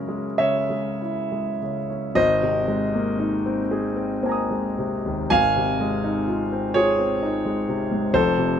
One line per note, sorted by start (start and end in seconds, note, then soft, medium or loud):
0.00 2.12 F#2 soft
0.00 0.39 C#3 soft
0.00 0.08 G#3 soft
0.00 0.26 C#4 soft
0.00 1.00 E4 medium
0.00 1.57 F#4 medium
0.00 1.60 A#4 medium
0.08 0.58 G#3 soft
0.38 0.89 C#3 soft
0.38 2.12 C#5 medium
0.38 2.15 E5 medium
0.70 1.19 G#3 soft
1.01 1.49 E4 soft
1.32 1.79 G#3 soft
1.62 2.06 C#3 soft
1.90 2.16 C#4 soft
2.15 5.25 G#1 medium
2.15 4.21 C5 medium
2.15 5.29 D#5 medium
2.42 2.83 C3 soft
2.68 3.09 G#3 soft
2.94 3.35 A#3 soft
3.19 3.60 D#4 soft
3.46 3.86 C4 medium
3.71 4.12 G#4 medium
3.96 4.38 C4 medium
4.23 4.66 A#3 soft
4.23 5.26 C5 soft
4.23 5.28 G#5 soft
4.29 5.29 A#5 soft
4.29 5.30 D#6 soft
4.50 4.94 G#3 soft
4.78 5.20 C3 soft
5.06 5.31 D#2 soft
5.30 8.08 G#1 medium
5.30 6.69 F5 medium
5.30 6.73 G#5 loud
5.56 5.93 C3 soft
5.80 6.17 G#3 soft
6.04 6.40 D#4 soft
6.28 6.64 F4 soft
6.52 6.88 C4 soft
6.74 7.11 F4 soft
6.74 8.08 G#4 medium
6.74 8.12 C#5 medium
6.98 7.34 C4 soft
7.22 7.57 D#4 soft
7.45 7.81 G#3 soft
7.69 8.03 C3 soft
7.91 8.12 G#2 soft
8.14 8.60 F1 medium
8.14 8.60 F2 medium
8.14 8.60 A4 medium
8.14 8.60 C5 medium
8.38 8.60 C3 soft